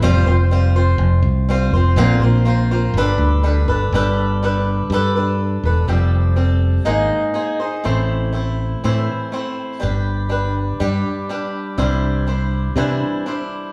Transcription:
X:1
M:4/4
L:1/8
Q:1/4=122
K:Gmix
V:1 name="Steel-string acoustic guitar"
[F,G,CFc] [CFc] [G,CFc] [CFc]3 [G,CFc] [CFc] | [_B,,D,_B,CFc] [B,CFc] [B,CFc] [B,CFc] [G,DA=B]2 [G,DAB] [DAB] | [G,DAB]2 [G,DAB]2 [G,DAB] [DAB]2 [DAB] | [F,G,CGA]2 [G,CGA]2 [_A,_B,_E_Ac]2 [B,EAc] [EAc] |
[A,,E,A,CEc]2 [A,CEc]2 [A,,E,A,CEc]2 [A,CEc]2 | [G,DGB]2 [G,DGB]2 [G,DGB]2 [G,DGB]2 | [C,E,G,DEc]2 [G,DEc]2 [C,E,G,DEc]2 [G,DEc]2 |]
V:2 name="Fingered electric bass" clef=bass
F,,, F,,,3 F,,, C,,2 F,,, | _B,,, B,,,3 G,,, D,,2 G,,, | G,,,4 G,,3 E,,, | F,,,4 _A,,, z3 |
A,,,4 A,, z3 | G,,,4 G,, z3 | C,,4 C, z3 |]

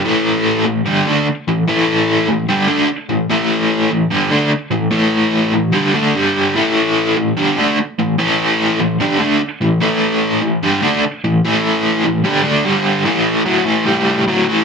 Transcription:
X:1
M:4/4
L:1/8
Q:1/4=147
K:Gmix
V:1 name="Overdriven electric guitar" clef=bass
[A,,E,A,]3 [A,,E,] [G,,D,G,] [D,A,D] z [A,,E,] | [A,,E,A,]3 [A,,E,] [G,,D,G,] [D,A,D] z [A,,E,] | [A,,E,A,]3 [A,,E,] [G,,D,G,] [D,A,D] z [A,,E,] | [A,,E,A,]3 [A,,E,] [G,,D,G,] [D,A,D] [G,,D,G,]2 |
[A,,E,A,]3 [A,,E,] [G,,D,G,] [D,A,D] z [A,,E,] | [A,,E,A,]3 [A,,E,] [G,,D,G,] [D,A,D] z [A,,E,] | [A,,E,A,]3 [A,,E,] [G,,D,G,] [D,A,D] z [A,,E,] | [A,,E,A,]3 [A,,E,] [G,,D,G,] [D,A,D] [G,,D,G,]2 |
[A,,E,]2 [A,,^F,] [A,,E,] [A,,G,]2 [A,,F,] [A,,E,] |]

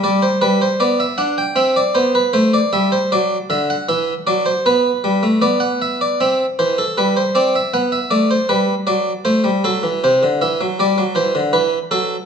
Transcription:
X:1
M:4/4
L:1/16
Q:1/4=78
K:C
V:1 name="Harpsichord"
d c B c d e ^f g e d c B c d e c | d2 e ^f e2 d c B4 d f e d | e2 c A B c d e ^f e d c B2 d2 | c2 A2 c2 e2 d2 c2 B2 A2 |]
V:2 name="Harpsichord" clef=bass
G,2 G,2 B,2 D2 C2 B,2 A,2 G,2 | ^F,2 D,2 E,2 F,2 B,2 G, A, B,4 | C2 E,2 G,2 C2 B,2 A,2 G,2 ^F,2 | A, G, ^F, E, C, D, E, F, G, F, E, D, E,2 F,2 |]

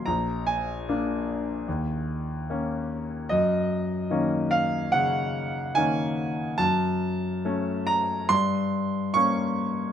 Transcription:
X:1
M:4/4
L:1/8
Q:1/4=73
K:Ebdor
V:1 name="Grand piano"
b a6 z | e3 f g2 a2 | =a3 b c'2 d'2 |]
V:2 name="Grand piano"
B,,,2 [B,=D]2 E,,2 [B,_D]2 | G,,2 [E,B,D]2 D,2 [E,B,D]2 | G,,2 [=A,D]2 =G,,2 [B,D]2 |]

